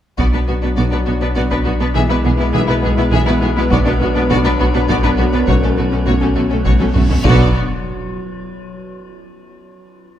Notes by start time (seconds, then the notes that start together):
0.18 B1 B2 F#3 B3 D4 F#4 B4 D5, taiko
0.32 B2 B3 D4 F#4 B4
0.48 B1 B2 B3 F#4
0.62 B2 B3 D4 F#4 B4
0.77 B1 B2 B3 F#4 D5
0.92 B2 B3 D4 F#4 B4
1.06 B1 B2 B3 F#4 B4
1.21 B2 B3 D4 F#4 B4
1.36 B1 B2 B3 F#4 D5
1.51 B2 B3 D4 B4, taiko
1.65 B1 B2 B3 F#4
1.80 B2 B3 D4 F#4 B4
1.95 B1 B2 E3 G#3 B3 E4 G#4 E5
2.10 B2 B3 E4 B4
2.24 B1 B2 B3 G#4
2.38 B2 B3 E4 B4
2.53 B1 B2 E3 B3 G#4 E5
2.67 B2 B3 E4 B4
2.82 B1 B2 B3 E4 G#4
2.97 B2 B3 E4 B4
3.12 B1 B2 E3 B3 G#4 E5
3.27 B2 B3 E4 B4
3.42 B1 B2 B3 G#4
3.56 B2 B3 E4 B4
3.71 B1 B2 F#3 B3 D4 F#4 D5, taiko
3.85 B2 B3 D4 F#4 B4
4.00 B1 B2 B3 F#4
4.15 B2 B3 D4 F#4 B4
4.30 B1 B2 B3 F#4 D5, taiko
4.45 B2 B3 D4 F#4 B4
4.60 B1 B2 B3 F#4 B4
4.74 B2 B3 D4 F#4 B4
4.89 B1 B2 B3 F#4 D5, taiko
5.03 B2 B3 D4 B4
5.18 B1 B2 B3 F#4
5.33 B2 B3 D4 F#4 B4
5.48 B1 B2 F#3 A3 C#4 F#4 A4 C#5, taiko, reverse cymbal
5.62 B2 A3 C#4 A4
5.77 B1 B2 A3 C#4 F#4
5.91 B2 A3 C#4 A4
6.06 B1 B2 F#3 A3 F#4 C#5, taiko
6.21 B2 A3 C#4 A4
6.36 B1 B2 A3 F#4
6.50 B2 A3 C#4 A4
6.65 B1 B2 F#3 A3 F#4 C#5, taiko
6.79 B2 A3 C#4 F#4 A4, taiko high
6.95 B1 B2 A3 C#4 F#4, taiko low-mid
7.09 B2 A3 C#4 A4, taiko low
7.24 B1 B2 F#3 B3 D4 F#4 D5, taiko, impact